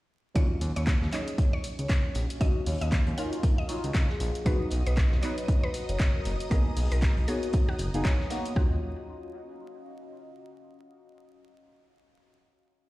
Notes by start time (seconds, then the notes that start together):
0.34 D#2 F#3 C#4 D#4 F4 C#5, kick, closed hi-hat
0.47 F#4
0.61 D#2, closed hi-hat, open hi-hat
0.73 D#2 C#5 D#5, closed hi-hat
0.84 F5, kick, snare, clap, closed hi-hat
1.02 D#2, snare
1.11 F#3 C#4 D#4 G#4 C#5 D#5, clap, closed hi-hat, open hi-hat
1.28 closed hi-hat
1.38 kick, closed hi-hat
1.53 C#5
1.64 closed hi-hat, open hi-hat
1.79 C#2 C#5, closed hi-hat
1.89 finger snap, kick, snare, clap, closed hi-hat
2.15 A#1, snare, closed hi-hat, open hi-hat
2.30 closed hi-hat
2.40 D#2 F#3 C#4 D#4 F#4 D#5, kick, closed hi-hat
2.66 D#2 C#5, open hi-hat
2.81 D#2 D#5, closed hi-hat
2.92 kick, snare, clap, closed hi-hat
3.07 D#2, closed hi-hat
3.17 F#3 C#4 D#4 F4 A#4 F5, closed hi-hat, open hi-hat
3.33 closed hi-hat
3.43 kick, closed hi-hat
3.58 D#5
3.68 F#3 C#4 D#4 F4, closed hi-hat, open hi-hat
3.84 C#2, closed hi-hat
3.94 finger snap, kick, snare, clap, closed hi-hat
4.09 G#4, snare
4.20 A#1, closed hi-hat, open hi-hat
4.35 closed hi-hat
4.45 B1 F#3 B3 D#4 F#4 B4 D#5 D#6, kick, closed hi-hat
4.71 B1, closed hi-hat, open hi-hat
4.82 A#5
4.86 B1 B4, closed hi-hat
4.97 kick, snare, clap, closed hi-hat
5.12 B1, snare
5.22 F#3 B3 D#4 B4 C#5, clap, closed hi-hat, open hi-hat
5.38 closed hi-hat
5.48 kick, closed hi-hat
5.64 B4
5.74 closed hi-hat, open hi-hat
5.89 F#1 C#5, closed hi-hat
5.99 finger snap, kick, snare, clap, closed hi-hat
6.15 A#4
6.25 F#1 A#4, snare, closed hi-hat, open hi-hat
6.40 closed hi-hat
6.50 B1 A#3 B3 D#4 G#4 A#4, kick, closed hi-hat
6.77 B1, open hi-hat
6.92 B1 A#4, closed hi-hat
7.02 kick, snare, clap, closed hi-hat
7.17 B1, closed hi-hat
7.27 A#3 B3 D#4 F#4 G#4 C#5, closed hi-hat, open hi-hat
7.43 closed hi-hat
7.53 kick, closed hi-hat
7.69 F#4
7.79 F#1, closed hi-hat, open hi-hat
7.94 F#1 A#3 B3 D#4 G#4, closed hi-hat
8.05 C#5, finger snap, kick, snare, clap, closed hi-hat
8.20 snare
8.30 A#3 B3 D#4 F#4, snare, closed hi-hat, open hi-hat
8.45 closed hi-hat
8.54 D#2 F#3 C#4 D#4 F4 F#4, kick
8.65 F#4
8.73 D#5
8.80 F5